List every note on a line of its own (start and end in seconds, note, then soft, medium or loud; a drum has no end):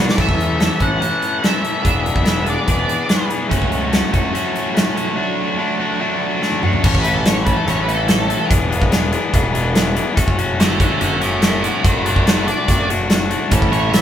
0.00 0.16 B3 medium
0.00 0.16 D4 medium
0.00 0.16 F#4 medium
0.00 0.16 D5 medium
0.09 0.18 D5 medium
0.09 snare loud
0.16 0.26 A1 medium
0.16 0.59 E3 medium
0.16 0.58 A3 medium
0.16 0.59 C#4 medium
0.16 0.59 A4 medium
0.16 kick medium
0.16 crash medium
0.20 0.83 E5 medium
0.29 0.68 E2 medium
0.29 kick medium
0.40 closed hi-hat soft
0.59 0.79 E3 medium
0.59 0.79 A3 medium
0.59 0.80 C#4 medium
0.59 0.81 A4 medium
0.59 snare medium
0.59 closed hi-hat medium
0.80 0.97 A1 medium
0.80 1.00 E3 medium
0.80 1.00 A3 medium
0.80 1.00 C#4 medium
0.80 1.01 A4 medium
0.80 1.45 F#5 medium
0.80 kick medium
0.80 closed hi-hat soft
1.00 1.42 E3 medium
1.00 1.42 A3 medium
1.00 1.42 C#4 medium
1.00 1.42 A4 medium
1.00 closed hi-hat medium
1.22 closed hi-hat medium
1.42 1.63 E3 medium
1.42 1.63 A3 medium
1.42 1.63 C#4 medium
1.42 1.64 A4 medium
1.42 1.86 E5 medium
1.42 snare medium
1.42 closed hi-hat medium
1.63 1.81 E3 medium
1.63 1.82 A3 medium
1.63 1.83 C#4 medium
1.63 1.84 A4 medium
1.63 closed hi-hat medium
1.82 2.09 E1 medium
1.82 2.23 E3 medium
1.82 2.23 B3 medium
1.82 2.24 D4 medium
1.82 2.25 G#4 medium
1.82 kick medium
1.82 closed hi-hat medium
1.87 2.49 E5 medium
2.06 closed hi-hat medium
2.16 2.56 E1 medium
2.16 kick medium
2.24 2.45 E3 medium
2.24 2.45 B3 medium
2.24 2.45 D4 medium
2.24 2.45 G#4 medium
2.24 snare medium
2.24 closed hi-hat medium
2.46 2.65 E3 medium
2.46 2.66 B3 medium
2.46 2.66 D4 medium
2.46 2.67 G#4 medium
2.46 closed hi-hat medium
2.50 3.28 D5 medium
2.66 2.84 E1 medium
2.66 3.07 E3 medium
2.66 3.08 B3 medium
2.66 3.08 D4 medium
2.66 3.08 G#4 medium
2.66 kick medium
2.66 closed hi-hat medium
2.89 closed hi-hat medium
3.08 3.28 E3 medium
3.08 3.28 B3 medium
3.08 3.30 D4 medium
3.08 3.30 G#4 medium
3.08 snare loud
3.08 closed hi-hat medium
3.29 3.49 E3 medium
3.29 3.48 B3 medium
3.29 3.49 D4 medium
3.29 3.50 G#4 medium
3.29 closed hi-hat medium
3.49 3.59 F#1 medium
3.49 3.91 F#3 medium
3.49 3.92 A3 medium
3.49 3.92 C#4 medium
3.49 3.93 F#4 medium
3.49 kick medium
3.49 closed hi-hat medium
3.62 4.02 C#2 medium
3.62 kick medium
3.72 closed hi-hat soft
3.92 4.11 F#3 medium
3.92 4.11 A3 medium
3.92 4.12 C#4 medium
3.92 4.13 F#4 medium
3.92 snare medium
3.92 closed hi-hat medium
4.11 4.30 F#1 medium
4.11 4.32 F#3 medium
4.11 4.33 A3 medium
4.11 4.33 C#4 medium
4.11 4.34 F#4 medium
4.11 kick medium
4.11 closed hi-hat soft
4.33 4.74 F#3 medium
4.33 4.74 A3 medium
4.33 4.74 C#4 medium
4.33 4.74 F#4 medium
4.33 closed hi-hat medium
4.56 closed hi-hat medium
4.74 4.95 F#3 medium
4.74 4.96 A3 medium
4.74 4.96 C#4 medium
4.74 4.96 F#4 medium
4.74 snare loud
4.74 closed hi-hat medium
4.96 5.16 F#3 medium
4.96 5.15 A3 medium
4.96 5.16 C#4 medium
4.96 5.15 F#4 medium
4.96 closed hi-hat medium
5.16 5.58 F#3 medium
5.16 5.56 A3 medium
5.16 5.57 D4 medium
5.16 5.57 F#4 loud
5.57 5.77 F#3 medium
5.57 5.78 A3 medium
5.57 5.79 D4 medium
5.57 5.80 F#4 medium
5.78 5.99 F#3 medium
5.78 5.99 A3 medium
5.78 6.00 D4 medium
5.78 6.00 F#4 medium
6.00 6.40 F#3 medium
6.00 6.41 A3 medium
6.00 6.42 D4 medium
6.00 6.42 F#4 medium
6.41 6.61 F#3 medium
6.41 6.62 A3 medium
6.41 6.63 D4 medium
6.41 6.63 F#4 medium
6.41 snare soft
6.52 high tom medium
6.62 6.82 F#3 medium
6.62 6.83 A3 medium
6.62 6.83 D4 medium
6.62 6.84 F#4 medium
6.62 mid tom medium
6.73 floor tom medium
6.84 7.48 A1 medium
6.84 7.04 E3 medium
6.84 7.04 A3 medium
6.84 7.05 C#4 medium
6.84 7.05 A4 medium
6.84 6.99 C#5 medium
6.84 kick loud
6.84 crash loud
6.95 kick medium
6.99 7.14 B4 medium
7.04 7.24 E3 medium
7.04 7.24 A3 medium
7.04 7.25 C#4 medium
7.04 7.25 A4 medium
7.04 closed hi-hat medium
7.14 7.27 A4 medium
7.25 7.45 E3 medium
7.25 7.44 A3 medium
7.25 7.44 C#4 medium
7.25 7.45 A4 loud
7.25 7.43 C#5 medium
7.25 snare loud
7.25 closed hi-hat medium
7.43 7.66 E3 medium
7.43 7.66 A3 medium
7.43 7.66 C#4 medium
7.43 7.66 A4 medium
7.43 7.55 B4 medium
7.43 kick medium
7.43 closed hi-hat medium
7.57 7.69 A4 medium
7.66 8.31 A1 loud
7.66 7.87 E3 medium
7.66 7.87 A3 medium
7.66 7.87 C#4 medium
7.66 7.88 A4 medium
7.66 7.82 C#5 medium
7.66 snare soft
7.66 closed hi-hat medium
7.83 7.93 B4 medium
7.87 8.08 E3 loud
7.87 8.08 A3 medium
7.87 8.08 C#4 medium
7.87 8.08 A4 medium
7.87 closed hi-hat medium
7.94 8.07 A4 medium
8.08 8.28 E3 medium
8.08 8.28 A3 medium
8.08 8.29 C#4 medium
8.08 8.49 A4 medium
8.08 8.30 A4 loud
8.08 snare loud
8.08 closed hi-hat medium
8.29 8.49 E3 medium
8.29 8.49 A3 medium
8.29 8.50 C#4 medium
8.29 8.50 A4 medium
8.29 closed hi-hat medium
8.49 9.15 E1 medium
8.49 8.69 E3 loud
8.49 8.69 B3 loud
8.49 8.69 D4 medium
8.49 8.70 G#4 loud
8.49 kick loud
8.49 closed hi-hat medium
8.69 8.91 E3 medium
8.69 8.91 B3 medium
8.69 8.91 D4 medium
8.69 8.92 G#4 medium
8.69 closed hi-hat medium
8.82 kick medium
8.91 9.11 E3 medium
8.91 9.11 B3 medium
8.91 9.12 D4 medium
8.91 9.12 G#4 loud
8.91 snare medium
8.91 closed hi-hat medium
9.11 9.32 E3 medium
9.11 9.33 B3 medium
9.11 9.33 D4 medium
9.11 9.34 G#4 medium
9.11 closed hi-hat medium
9.33 9.98 E1 loud
9.33 9.52 E3 medium
9.33 9.53 B3 medium
9.33 9.53 D4 medium
9.33 9.54 G#4 medium
9.33 kick medium
9.33 closed hi-hat medium
9.53 9.74 E3 medium
9.53 9.74 B3 medium
9.53 9.75 D4 loud
9.53 9.75 G#4 loud
9.53 closed hi-hat medium
9.75 9.94 E3 medium
9.75 9.95 B3 medium
9.75 9.96 D4 medium
9.75 9.96 G#4 medium
9.75 snare loud
9.75 closed hi-hat medium
9.96 10.16 E3 medium
9.96 10.14 B3 medium
9.96 10.16 D4 medium
9.96 10.16 G#4 medium
9.96 closed hi-hat medium
10.15 10.82 F#1 medium
10.15 10.37 A3 medium
10.15 10.37 C#4 loud
10.15 10.39 F#4 loud
10.15 kick loud
10.15 closed hi-hat medium
10.28 kick medium
10.38 10.58 A3 medium
10.38 10.59 C#4 medium
10.38 10.60 F#4 medium
10.38 closed hi-hat medium
10.59 10.79 A3 medium
10.59 10.80 C#4 medium
10.59 10.80 F#4 loud
10.59 10.80 D5 medium
10.59 10.80 F#5 medium
10.59 snare loud
10.59 closed hi-hat medium
10.80 11.00 A3 medium
10.80 11.00 C#4 medium
10.80 11.00 F#4 medium
10.80 11.00 D5 medium
10.80 11.01 F#5 medium
10.80 kick medium
10.80 closed hi-hat medium
11.00 11.66 F#1 loud
11.00 11.20 A3 medium
11.00 11.20 C#4 medium
11.00 11.21 F#4 medium
11.00 11.21 D5 medium
11.00 11.22 F#5 medium
11.00 closed hi-hat medium
11.21 11.41 A3 medium
11.21 11.41 C#4 medium
11.21 11.42 F#4 loud
11.21 11.41 C#5 medium
11.21 11.43 E5 medium
11.21 closed hi-hat medium
11.42 11.61 A3 medium
11.42 11.61 C#4 medium
11.42 11.62 F#4 medium
11.42 11.62 C#5 medium
11.42 11.62 E5 medium
11.42 snare medium
11.42 closed hi-hat medium
11.61 11.83 A3 medium
11.61 11.83 C#4 medium
11.61 11.83 F#4 medium
11.61 11.83 C#5 medium
11.61 11.84 E5 medium
11.61 closed hi-hat medium
11.84 12.49 F#1 medium
11.84 12.05 A3 loud
11.84 12.04 D4 loud
11.84 12.05 F#4 loud
11.84 12.05 B4 medium
11.84 12.06 D5 medium
11.84 kick loud
11.84 closed hi-hat medium
12.05 12.25 A3 medium
12.05 12.25 D4 medium
12.05 12.26 F#4 medium
12.05 12.26 B4 medium
12.05 12.27 D5 medium
12.05 closed hi-hat medium
12.16 kick medium
12.26 12.47 A3 medium
12.26 12.47 D4 medium
12.26 12.47 F#4 medium
12.26 12.47 B4 medium
12.26 snare loud
12.26 closed hi-hat medium
12.30 12.47 D5 medium
12.47 12.68 A3 medium
12.47 12.68 D4 medium
12.47 12.69 F#4 medium
12.47 12.88 D5 medium
12.47 closed hi-hat medium
12.68 13.33 F#1 loud
12.68 12.88 A3 medium
12.68 12.89 D4 medium
12.68 12.90 F#4 medium
12.68 kick medium
12.68 snare soft
12.68 closed hi-hat medium
12.90 13.07 A3 medium
12.90 13.08 D4 medium
12.90 13.09 F#4 loud
12.90 closed hi-hat medium
13.09 13.29 A3 medium
13.09 13.30 D4 medium
13.09 13.30 F#4 medium
13.09 snare loud
13.09 closed hi-hat medium
13.30 13.51 A3 medium
13.30 13.51 D4 medium
13.30 13.51 F#4 medium
13.30 closed hi-hat medium
13.51 14.02 A1 medium
13.51 13.70 A2 medium
13.51 13.71 E3 loud
13.51 13.71 A3 loud
13.51 13.71 C#4 medium
13.51 13.73 E4 medium
13.51 13.71 A4 loud
13.51 kick loud
13.51 closed hi-hat loud
13.62 kick medium
13.71 13.91 A2 medium
13.71 13.92 E3 medium
13.71 13.92 A3 medium
13.71 13.93 C#4 medium
13.71 13.94 E4 medium
13.71 13.93 A4 medium
13.71 13.93 C#5 medium
13.71 closed hi-hat medium
13.92 14.02 A2 medium
13.92 14.02 E3 medium
13.92 14.02 A3 medium
13.92 14.02 C#4 medium
13.92 14.02 E4 loud
13.92 14.02 A4 medium
13.92 14.02 E5 medium
13.92 snare loud
13.92 closed hi-hat medium